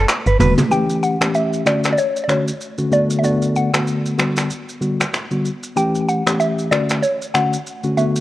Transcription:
Already playing: synth pluck B4
0.09 finger snap, cross-stick, clap, shaker
0.26 log drum bass G1, clean electric guitar B4, shaker
0.39 log drum bass E1, tine electric piano D3 G3 B3 F#4, clean electric guitar B4, mid tom, open hi-hat, shaker
0.58 mid tom, shaker
0.71 tine electric piano E3 A3 C#4 G4, synth pluck G5, shaker
0.90 shaker
1.03 synth pluck F#5, shaker
1.21 tine electric piano E3 A3 C#4 G4, finger snap, cross-stick, shaker
1.35 synth pluck E5, shaker
1.53 shaker
1.65 tine electric piano D3 A3 C#4 F#4, synth pluck D5, finger snap, cross-stick, shaker
1.84 finger snap, cross-stick, shaker
1.93 synth pluck D5
1.98 synth pluck C#5, shaker
2.16 shaker
2.24 synth pluck D5
2.28 tine electric piano D3 A3 C#4 F#4, synth pluck C#5, finger snap, cross-stick, shaker
2.48 shaker
2.61 shaker
2.78 tine electric piano D3 A3 C#4 F#4, shaker
2.92 tine electric piano D3 A3 B3 F#4, synth pluck D5, shaker
3.10 shaker
3.19 synth pluck E5
3.23 tine electric piano D3 A3 B3 F#4, synth pluck D5, shaker
3.42 shaker
3.56 synth pluck F#5, shaker
3.73 tine electric piano D3 A3 B3 F#4, finger snap, cross-stick, shaker
3.87 shaker
4.06 shaker
4.18 tine electric piano D3 G3 B3 F#4, finger snap, cross-stick, shaker
4.37 finger snap, cross-stick, shaker
4.50 shaker
4.69 shaker
4.81 tine electric piano D3 G3 B3 F#4, shaker
5.01 finger snap, cross-stick, shaker
5.14 finger snap, cross-stick, shaker
5.31 tine electric piano D3 G3 B3 F#4, shaker
5.45 shaker
5.63 shaker
5.76 tine electric piano E3 A3 C#4 G4, synth pluck G5, shaker
5.95 shaker
6.09 synth pluck F#5, shaker
6.26 tine electric piano E3 A3 C#4 G4, finger snap, cross-stick, shaker
6.40 synth pluck E5, shaker
6.58 shaker
6.71 tine electric piano D3 A3 C#4 F#4, synth pluck D5, finger snap, cross-stick, shaker
6.89 finger snap, cross-stick, shaker
7.02 synth pluck C#5, shaker
7.22 shaker
7.34 tine electric piano D3 A3 C#4 F#4, synth pluck F#5, finger snap, cross-stick, shaker
7.53 shaker
7.67 shaker
7.83 tine electric piano D3 A3 C#4 F#4, shaker
7.97 tine electric piano D3 A3 B3 F#4, synth pluck E5, shaker
8.16 shaker

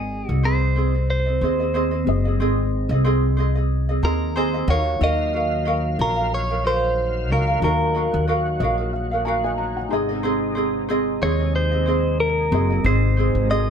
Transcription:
Already playing: upright bass G#1, ukulele C4 G#4 C5 D#5, felt piano C4 G#4 D#5, clean electric guitar G#4
0.29 upright bass C2, ukulele C4 G#4 D#5, clean electric guitar F#4
0.43 ukulele C4 G#4 C5 D#5, clean electric guitar C5
0.76 ukulele C4 G#4 C5 D#5
0.94 ukulele C4 D#5
1.10 clean electric guitar C5
1.26 ukulele C4 D#5
1.41 upright bass D#2, ukulele C4 G#4 C5 D#5
1.60 ukulele C4 G#4 D#5
1.74 ukulele C4 G#4 C5 D#5
1.91 ukulele C4 D#5
2.04 upright bass F#1, felt piano C4 G#4
2.09 felt piano D#5
2.25 ukulele C4 G#4 D#5
2.39 upright bass G#1, ukulele C4 G#4 C5 D#5
2.89 upright bass C2, ukulele G#4 D#5
2.94 ukulele C4
3.04 ukulele C4 G#4 C5 D#5
3.37 ukulele C4 G#4 C5 D#5
3.55 ukulele C4 G#4 D#5
3.89 ukulele C4 G#4 D#5
4.03 upright bass D#2, ukulele C4 G#4 C5 D#5, clean electric guitar A#4, felt piano A#5
4.36 ukulele C4 G#4 C5 D#5, clean electric guitar C5, felt piano G#5
4.54 ukulele C4 G#4 D#5
4.68 upright bass D#2, ukulele F#4 A#4 D#5 F5, clean electric guitar C#5, felt piano F#5
4.99 upright bass D#2, tonewheel organ D#3 F#3 F5, felt piano D#4 F#4 F5, ukulele F#4 A#4 D#5
5.03 clean electric guitar D#5, ukulele F5
5.33 ukulele F#4 A#4 D#5 F5
5.65 ukulele F#4 A#4 D#5 F5
5.99 upright bass A#1, ukulele F#4 A#4 D#5 F5, clean electric guitar A#4
6.16 ukulele F#4 A#4 F5
6.34 clean electric guitar C#5
6.49 ukulele F#4 A#4 F5
6.64 ukulele F#4 A#4 D#5 F5, clean electric guitar C5
7.30 upright bass C#2, ukulele F#4 A#4 D#5 F5, clean electric guitar A#4
7.48 ukulele F#4 A#4 F5
7.60 upright bass D#2, felt piano D#4 F#4, tonewheel organ F#4, ukulele F#4 D#5
7.64 ukulele A#4 F5, clean electric guitar A#4, felt piano F5
7.95 ukulele F#4 A#4 D#5 F5
8.14 upright bass D#2
8.28 ukulele F#4 A#4 D#5 F5
8.60 upright bass A#1, ukulele F#4 A#4 D#5, felt piano D#5
8.64 ukulele F5
8.78 ukulele F#4 A#4 F5
8.93 felt piano F5
9.11 ukulele F#4 A#4 F5
9.25 ukulele F#4 A#4 D#5 F5, felt piano F5 G#5 A#5
9.44 felt piano D#5 G#5
9.58 felt piano A#5
9.77 felt piano C#5 F#5
9.89 upright bass G#1, tonewheel organ C3 G#3 D#4, ukulele C4 C5, felt piano D#4 G#4 A#5
9.93 ukulele G#4 D#5, felt piano D#5
10.09 ukulele C4 D#5
10.23 ukulele C4 G#4 C5 D#5
10.55 ukulele C4 G#4 C5 D#5
10.89 ukulele C4 G#4 C5 D#5
11.22 upright bass D#2, ukulele C4 G#4 C5 D#5, clean electric guitar C#5
11.40 ukulele C4 D#5
11.56 clean electric guitar C5
11.71 ukulele C4 G#4 D#5
11.86 ukulele C4 G#4 C5 D#5
12.20 clean electric guitar A#4
12.51 upright bass F#1, felt piano C4 G#4 D#5, ukulele C4 G#4 C5
12.55 ukulele D#5
12.70 ukulele C4 D#5
12.84 upright bass G#1, ukulele C4 G#4 C5 D#5, clean electric guitar C5
13.17 ukulele C4 G#4 C5 D#5
13.35 upright bass G#1
13.50 ukulele C4 G#4 C5 D#5, clean electric guitar D#5

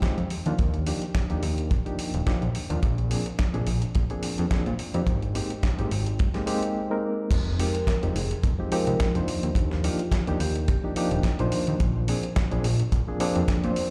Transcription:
0.02 reed electric piano F3 G#3 C4 D#4 G4, kick, snare, closed hi-hat
0.18 analog synth bass F2, closed hi-hat
0.30 analog synth bass D#2, open hi-hat
0.46 analog synth bass D#2, reed electric piano F3 A#3 D4 D#4 F4, closed hi-hat
0.59 analog synth bass D#2, kick, closed hi-hat
0.74 closed hi-hat
0.87 reed electric piano F3 A#3 D4 D#4 G4, open hi-hat
1.02 closed hi-hat
1.15 kick, snare, closed hi-hat
1.30 analog synth bass D#2, reed electric piano F3 A#3 D4 D#4 G4, closed hi-hat
1.43 analog synth bass D#2, open hi-hat
1.58 closed hi-hat
1.71 analog synth bass D#1, kick, closed hi-hat
1.85 reed electric piano F3 A#3 D4 D#4 G4, closed hi-hat
1.99 open hi-hat
2.14 analog synth bass D#1, closed hi-hat
2.26 reed electric piano F3 A#3 D4 D#4 G4, kick, snare, closed hi-hat
2.42 analog synth bass A#1, closed hi-hat
2.55 analog synth bass D#2, open hi-hat
2.70 analog synth bass D#2, reed electric piano F3 A#3 D4 D#4 F4, closed hi-hat
2.83 analog synth bass A#1, kick, closed hi-hat
2.98 closed hi-hat
3.10 reed electric piano F3 A#3 C4 D4 G#4, open hi-hat
3.26 closed hi-hat
3.39 kick, snare, closed hi-hat
3.53 analog synth bass A#1, reed electric piano F3 A#3 C4 D4 G#4, closed hi-hat
3.67 analog synth bass A#1, open hi-hat
3.82 closed hi-hat
3.95 analog synth bass A#1, kick, closed hi-hat
4.10 reed electric piano F3 A#3 C4 D4 G#4, closed hi-hat
4.23 open hi-hat
4.38 analog synth bass F2, closed hi-hat
4.51 reed electric piano F3 A#3 C4 D4 G#4, kick, snare, closed hi-hat
4.66 analog synth bass A#2, closed hi-hat
4.79 analog synth bass F2, open hi-hat
4.94 analog synth bass F2, reed electric piano F3 A#3 C4 D4 G4, closed hi-hat
5.07 analog synth bass G#1, kick, closed hi-hat
5.22 closed hi-hat
5.35 reed electric piano G#3 A#3 C4 D#4 G4, open hi-hat
5.50 closed hi-hat
5.63 kick, snare, closed hi-hat
5.78 analog synth bass G#1, reed electric piano G#3 A#3 C4 D#4 G4, closed hi-hat
5.91 analog synth bass G#1, open hi-hat
6.07 closed hi-hat
6.19 analog synth bass G#2, kick, closed hi-hat
6.34 reed electric piano G#3 A#3 C4 D#4 G4, snare, closed hi-hat
6.46 reed electric piano G#3 A#3 C4 D#4 G4, open hi-hat
6.63 closed hi-hat
6.90 reed electric piano G#3 A#3 C4 D#4 A#4
7.31 analog synth bass F1, kick, closed hi-hat, crash
7.59 reed electric piano F3 G#3 C4 D#4 G4, vibraphone A#4, open hi-hat
7.75 vibraphone A#4, closed hi-hat
7.87 kick, snare, closed hi-hat
8.03 analog synth bass F1, reed electric piano F3 G#3 C4 D#4 G4, closed hi-hat
8.16 analog synth bass F1, vibraphone G#4, open hi-hat
8.31 closed hi-hat
8.44 analog synth bass F1, kick, closed hi-hat
8.59 reed electric piano F3 G#3 C4 D#4 G4
8.72 reed electric piano F3 G#3 C4 D#4 G4, vibraphone A#4, open hi-hat
8.87 analog synth bass C2, vibraphone A#4, closed hi-hat
9.00 kick, snare, closed hi-hat
9.14 analog synth bass F2, reed electric piano F3 A#3 D4 D#4 C5, closed hi-hat
9.28 analog synth bass D#2, open hi-hat
9.43 analog synth bass D#2, closed hi-hat
9.55 analog synth bass D#2, kick, closed hi-hat
9.71 snare
9.84 reed electric piano F3 A#3 D4 D#4 G4, vibraphone F4, open hi-hat
9.99 closed hi-hat
10.12 kick, snare, closed hi-hat
10.27 analog synth bass D#2, reed electric piano F3 A#3 D4 D#4 G4, closed hi-hat
10.40 analog synth bass D#2, vibraphone G4, open hi-hat
10.55 vibraphone G4, closed hi-hat
10.68 analog synth bass D#1, kick, closed hi-hat
10.84 reed electric piano F3 A#3 D4 D#4 G4
10.96 reed electric piano F3 A#3 D4 D#4 G4, open hi-hat
11.11 analog synth bass D#1, closed hi-hat
11.23 kick, snare, closed hi-hat
11.39 analog synth bass A#1, reed electric piano F3 A#3 D4 D#4 C5, closed hi-hat
11.52 analog synth bass D#2, open hi-hat
11.67 analog synth bass D#2, closed hi-hat
11.80 analog synth bass A#1, kick, closed hi-hat
12.08 reed electric piano F3 A#3 C4 D4 G#4, open hi-hat
12.23 closed hi-hat
12.36 kick, snare, closed hi-hat
12.51 analog synth bass A#1, reed electric piano F3 A#3 C4 D4 G#4, closed hi-hat
12.64 analog synth bass A#1, open hi-hat
12.80 closed hi-hat
12.92 analog synth bass A#1, kick, closed hi-hat
13.08 reed electric piano F3 A#3 C4 D4 G#4
13.20 reed electric piano F3 A#3 C4 D4 G#4, open hi-hat
13.36 analog synth bass F2, closed hi-hat
13.48 kick, snare, closed hi-hat
13.64 analog synth bass A#2, reed electric piano F3 A#3 C4 D4 C5, closed hi-hat
13.76 analog synth bass F2, open hi-hat

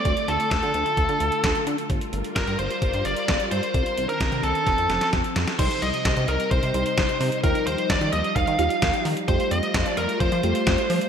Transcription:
Already playing: string machine A3, lead electric guitar D5
0.05 analog synth bass D2, string machine D3 F4, kick, closed hi-hat
0.17 closed hi-hat
0.28 analog synth bass D2, lead electric guitar A4, closed hi-hat
0.40 closed hi-hat
0.51 analog synth bass D2, lead electric guitar A4, kick, snare, closed hi-hat
0.63 analog synth bass D3, closed hi-hat
0.74 analog synth bass D2, closed hi-hat
0.86 closed hi-hat
0.97 analog synth bass D2, kick, closed hi-hat
1.09 analog synth bass D3, closed hi-hat
1.20 analog synth bass D2, closed hi-hat
1.32 closed hi-hat
1.44 analog synth bass D2, kick, snare, closed hi-hat
1.55 closed hi-hat
1.67 analog synth bass D3, closed hi-hat
1.78 closed hi-hat
1.90 analog synth bass G1, string machine G3 F4 A#4, kick, closed hi-hat
2.01 closed hi-hat
2.13 analog synth bass G1, closed hi-hat
2.24 closed hi-hat
2.36 analog synth bass G1, lead electric guitar A#4, kick, snare, closed hi-hat
2.47 analog synth bass G2, closed hi-hat
2.59 analog synth bass G1, lead electric guitar C5, closed hi-hat
2.71 closed hi-hat
2.82 analog synth bass G1, kick, closed hi-hat
2.93 analog synth bass G2, closed hi-hat
3.05 analog synth bass G1, lead electric guitar D5, closed hi-hat
3.17 closed hi-hat
3.28 analog synth bass G1, kick, snare, closed hi-hat
3.40 closed hi-hat
3.51 analog synth bass G2, lead electric guitar C5, closed hi-hat
3.63 closed hi-hat
3.74 analog synth bass C2, string machine D#3 C4 D4, kick, closed hi-hat
3.86 closed hi-hat
3.97 analog synth bass C2, closed hi-hat
4.09 lead electric guitar A#4, closed hi-hat
4.20 analog synth bass C2, kick, snare, closed hi-hat
4.32 analog synth bass C3, closed hi-hat
4.43 analog synth bass C2, lead electric guitar A4, closed hi-hat
4.55 closed hi-hat
4.67 analog synth bass F1, string machine F3 A4, kick, snare, closed hi-hat
4.78 analog synth bass F2, closed hi-hat
4.90 analog synth bass F1, snare, closed hi-hat
5.01 snare, closed hi-hat
5.13 analog synth bass F1, kick, snare, closed hi-hat
5.24 closed hi-hat
5.36 analog synth bass F2, snare, closed hi-hat
5.47 snare, closed hi-hat
5.59 analog synth bass C2, string machine C3 G3 D#4, fm electric piano D#4 G4 C5, lead electric guitar C5, kick, closed hi-hat, crash
5.71 closed hi-hat
5.82 analog synth bass C2, lead electric guitar D#5, closed hi-hat
5.94 closed hi-hat
6.05 analog synth bass C2, kick, snare, closed hi-hat
6.17 analog synth bass C3, closed hi-hat
6.28 analog synth bass C2, lead electric guitar A#4, closed hi-hat
6.40 closed hi-hat
6.51 analog synth bass C2, lead electric guitar C5, kick, closed hi-hat
6.63 analog synth bass C3, closed hi-hat
6.74 analog synth bass C2, fm electric piano D#4 G4 C5, closed hi-hat
6.86 closed hi-hat
6.97 analog synth bass C2, kick, snare, closed hi-hat
7.09 closed hi-hat
7.21 analog synth bass C3, open hi-hat
7.32 closed hi-hat
7.44 analog synth bass D#2, string machine F3, fm electric piano D#4 F4 G4, lead electric guitar A#4, kick, closed hi-hat
7.55 closed hi-hat
7.67 analog synth bass D#2, lead electric guitar C5, closed hi-hat
7.78 closed hi-hat
7.90 analog synth bass D#2, lead electric guitar D5, kick, snare, closed hi-hat
8.01 analog synth bass D#3, closed hi-hat
8.13 analog synth bass D#2, lead electric guitar D#5, closed hi-hat
8.24 closed hi-hat
8.36 analog synth bass D#2, lead electric guitar F5, kick, closed hi-hat
8.47 analog synth bass D#3, closed hi-hat
8.59 analog synth bass D#2, fm electric piano D#4 F4 G4, lead electric guitar F5, closed hi-hat
8.70 closed hi-hat
8.82 analog synth bass D#2, kick, snare, closed hi-hat
8.94 closed hi-hat
9.05 analog synth bass D#3, open hi-hat
9.17 closed hi-hat
9.28 analog synth bass F2, string machine A3 F4, fm electric piano A3 F4 G4, lead electric guitar C5, kick, closed hi-hat
9.40 closed hi-hat
9.51 analog synth bass F2, lead electric guitar D#5, closed hi-hat
9.63 closed hi-hat
9.74 analog synth bass F2, kick, snare, closed hi-hat
9.86 analog synth bass F3, lead electric guitar D5, closed hi-hat
9.97 analog synth bass F2, lead electric guitar A#4, closed hi-hat
10.09 closed hi-hat
10.20 analog synth bass F2, lead electric guitar C5, kick, closed hi-hat
10.32 analog synth bass F3, closed hi-hat
10.43 analog synth bass F2, fm electric piano A3 F4 G4, closed hi-hat
10.55 closed hi-hat
10.67 analog synth bass F2, kick, snare, closed hi-hat
10.78 closed hi-hat
10.90 analog synth bass F3, open hi-hat
11.01 closed hi-hat

